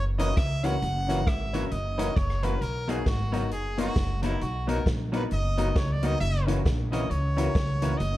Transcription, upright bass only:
Already playing: F#1
0.37 C#2
0.82 F#1
1.27 G#1
1.72 F#1
2.17 F#1
2.61 B1
3.07 G#1
3.52 F#1
3.96 F#1
4.42 B1
4.86 A#1
5.32 F#1
5.76 C#2
6.21 F#1
6.66 A#1
7.10 C#2
7.55 C#2
8.00 F#1

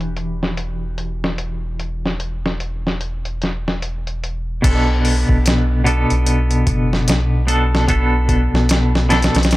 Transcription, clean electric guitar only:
Already playing: E3 D4 F#4 G4
4.62 B2 B3 D4 A4
5.84 B2 B3 D4 A4
7.47 B2 B3 D4 A4
7.88 B2 B3 D4 A4
9.09 B2 B3 D4 A4

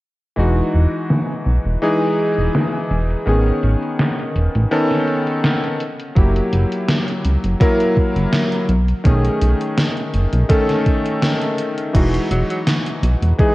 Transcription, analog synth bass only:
0.38 E1
0.74 E1
1.46 B1
1.66 E1
2.38 E1
2.91 E1
3.27 A1
3.63 A1
4.35 E1
4.55 A1
6.16 F#1
6.53 F#1
7.25 C#2
7.44 F#1
8.16 F#1
8.69 B1
9.05 B1
9.42 B1
10.14 F#1
10.33 B1
11.94 E1
12.31 E1
13.03 B1
13.22 E1

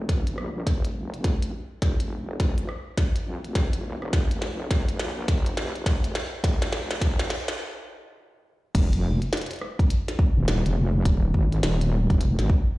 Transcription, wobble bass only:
Already playing: F1
0.38 A#1
0.67 F1
1.14 F1
1.82 F1
3.27 F2
3.45 F1
3.85 D#1
4.13 F1
5.00 A#1
5.28 F1
5.76 F1
6.44 F1
8.75 F1
10.37 D#1
10.66 F1
11.05 D#1
11.34 G#1
11.63 D#1
12.10 F1
12.39 G#1

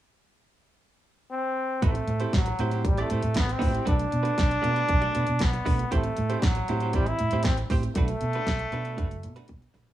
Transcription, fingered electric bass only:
1.83 A1
2.07 A2
2.34 A1
2.59 A2
2.85 A1
3.11 A2
3.24 A2
3.36 A1
3.61 A2
3.87 B1
4.13 B2
4.38 B1
4.65 B2
4.90 B1
5.16 B2
5.29 B2
5.41 B1
5.66 B2
5.92 A1
6.18 A2
6.43 A1
6.69 A2
6.94 A1
7.21 A2
7.32 A2
7.45 A1
7.70 A2
7.96 B1
8.21 B2
8.47 B1
8.72 B2
8.98 F#1
9.24 B2
9.49 B2
9.75 A#1

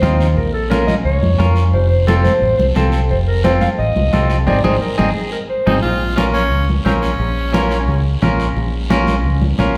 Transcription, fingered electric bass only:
0.02 D#2
0.36 A#1
1.05 C#2
1.22 F2
1.39 F2
1.73 F1
2.42 A1
2.59 C2
2.76 C2
3.10 F1
3.79 A1
3.96 C2
4.13 C2
4.47 G#1
4.65 G#1
4.99 G#1
5.67 G#1
5.84 A#1
6.52 C#2
6.85 A#1
7.19 A#1
7.88 C#2
8.22 A#1
8.56 A#1
9.25 C#2
9.59 A#1

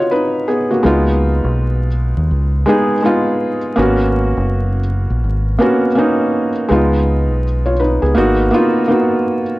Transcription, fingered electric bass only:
0.85 C#2
1.44 B1
2.17 D#2
2.31 C#2
3.78 G#1
4.37 F#1
5.10 A#1
5.24 G#1
6.71 C#2
7.30 B1
8.03 C#2
8.17 G#1

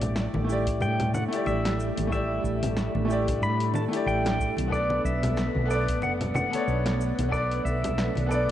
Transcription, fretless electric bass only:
Already playing: A1
0.34 A1
0.81 A2
1.46 A1
1.97 A1
2.44 A1
2.95 A1
3.42 A2
4.06 A1
4.58 B1
5.05 B1
5.56 B1
6.03 F#1
6.68 B1
7.19 B1
7.65 B1
8.16 B1

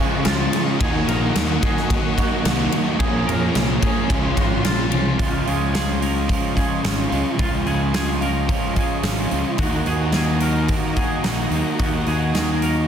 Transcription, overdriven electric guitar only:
Already playing: C#4 F4
0.00 C#3 F3 G#3
0.26 C#3 F3 G#3 C#4 F4
0.79 D#3 A#3 D#4 F#4
2.17 D#3 A#3 D#4 F#4
2.45 D#3 A#3 D#4 F#4
2.99 A#2 F3 A#3 C#4 F4
4.09 C#3 F3 G#3 C#4 F4
5.18 C#3 F3 G#3 C#4 F4
5.46 G#3 C#4 F4
5.73 F3 G#3 C#4 F4
6.00 G#3 C#4 F4
6.28 C#3 F3 G#3 C#4 F4
6.55 G#3 C#4 F4
6.84 F3 G#3 C#4 F4
7.10 G#3 C#4 F4
7.38 C#3 F3 G#3 C#4 F4
7.66 G#3 C#4 F4
7.94 F3 G#3 C#4 F4
8.21 G#3 C#4 F4
8.49 C#3 F3 G#3 C#4 F4
8.76 G#3 C#4 F4
9.03 F3 G#3 C#4 F4
9.32 G#3 C#4 F4
9.59 D#3 A#3 D#4 F#4
9.87 A#3 D#4 F#4
10.14 D#3 A#3 D#4 F#4
10.42 A#3 D#4 F#4
10.69 D#3 A#3 D#4 F#4
10.96 A#3 D#4 F#4
11.25 D#3 A#3 D#4 F#4
11.52 A#3 D#4 F#4
11.79 D#3 A#3 D#4 F#4
12.08 A#3 D#4 F#4
12.35 D#3 A#3 D#4 F#4
12.63 A#3 D#4 F#4

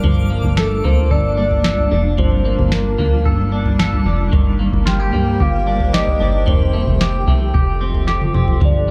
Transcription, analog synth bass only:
0.04 G1
0.44 G1
0.85 D2
1.11 G1
1.92 F1
2.18 G1
2.59 G1
2.99 D2
3.26 G1
4.06 F1
4.33 G1
4.73 G1
5.13 G2
5.40 G1
6.20 G1
6.47 F1
6.87 F1
7.27 C2
7.55 F1
8.34 F1
8.62 G1

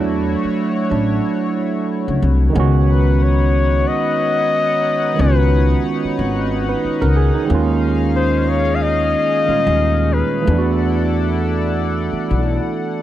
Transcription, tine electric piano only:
Already playing: F#3 A3 D4
0.90 F#3 A3 D4
2.50 D#3 G#3
2.55 B3 C#4
2.60 F#4
5.14 D#3 G#3
5.19 B3 C#4
5.24 F4
5.30 F#4
6.69 B4
7.01 A#4
7.16 G#4
7.35 D#4
7.45 D#3 G#3
7.50 A#3 C#4
7.55 F4
9.46 A#2 D#3 G3 C#4
9.50 G#3 F4
10.42 E3 A3
10.47 B3 D4
10.52 E4
10.58 F#4

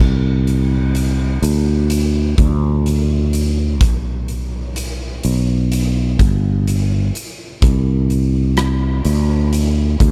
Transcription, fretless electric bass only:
0.00 C2
1.42 D2
2.38 D2
3.81 B1
5.25 B1
6.19 G1
7.62 C2
9.05 D2
10.00 D2

